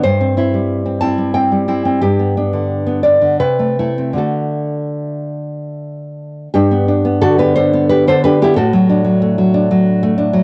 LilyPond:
\new Staff \with { instrumentName = "Nylon-string guitar" } { \time 3/4 \key g \major \tempo 4 = 89 << { c''4. a''8 g''4 | g'4. d''8 b'4 | a'2 r4 | <d' g'>4 <fis' a'>16 <g' b'>16 <a' c''>8 <g' b'>16 <a' c''>16 <g' b'>16 <e' g'>16 |
<fis' a'>2~ <fis' a'>8 r8 | } \\ { g,16 c'16 <c' e'>16 g8 c'16 <c' e'>16 g16 c'16 g16 <c' e'>16 c'16 | g,16 b16 <b d'>16 d8 b16 <b d'>16 d16 c16 a16 <a e'>16 c'16 | <d a fis'>2. | g,16 b16 d'16 b16 d16 b16 d'16 b8 d16 d'16 b16 |
a,16 fis16 d'16 fis16 a16 fis16 d'16 fis8 a16 d'16 fis16 | } >> }